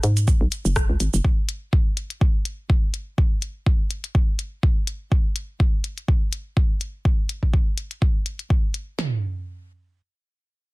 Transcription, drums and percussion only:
0.04 closed hi-hat medium
0.04 shaker soft
0.17 closed hi-hat soft
0.17 shaker soft
0.28 kick loud
0.28 shaker medium
0.52 closed hi-hat loud
0.52 shaker soft
0.65 shaker soft
0.76 kick loud
0.76 cross-stick medium
0.76 shaker soft
1.00 closed hi-hat medium
1.00 shaker soft
1.14 shaker soft
1.24 kick loud
1.49 closed hi-hat medium
1.73 kick loud
1.97 closed hi-hat medium
2.10 closed hi-hat soft
2.21 kick loud
2.45 closed hi-hat loud
2.70 kick loud
2.94 closed hi-hat medium
3.18 kick loud
3.42 closed hi-hat medium
3.66 kick loud
3.91 closed hi-hat medium
4.04 closed hi-hat soft
4.15 kick loud
4.39 closed hi-hat medium
4.63 kick loud
4.87 closed hi-hat medium
5.12 kick loud
5.36 closed hi-hat medium
5.60 kick loud
5.84 closed hi-hat medium
5.98 closed hi-hat soft
6.08 kick loud
6.33 closed hi-hat medium
6.57 kick loud
6.81 closed hi-hat medium
7.05 kick loud
7.29 closed hi-hat medium
7.43 kick medium
7.53 kick loud
7.78 closed hi-hat medium
7.91 closed hi-hat soft
8.02 kick loud
8.26 closed hi-hat medium
8.39 closed hi-hat soft
8.50 kick loud
8.74 closed hi-hat medium
8.99 snare loud
8.99 floor tom loud

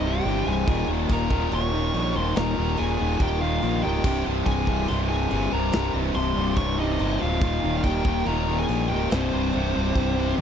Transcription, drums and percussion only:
0.25 china medium
0.68 kick loud
0.68 china medium
1.09 kick medium
1.09 china medium
1.30 kick medium
1.52 china medium
1.94 china medium
2.36 snare loud
2.36 china medium
2.77 china medium
3.20 kick medium
3.20 china medium
3.62 china medium
4.04 kick loud
4.04 crash loud
4.04 china medium
4.46 kick medium
4.46 china medium
4.67 kick medium
4.88 china medium
5.31 china medium
5.72 snare loud
5.72 china medium
6.14 china medium
6.56 kick loud
6.56 china medium
6.99 china medium
7.41 kick loud
7.41 china medium
7.83 kick medium
7.83 china medium
8.05 kick loud
8.26 china medium
8.69 china medium
9.11 snare loud
9.11 china medium
9.53 china medium
9.95 kick medium
9.95 china medium
10.38 high tom medium

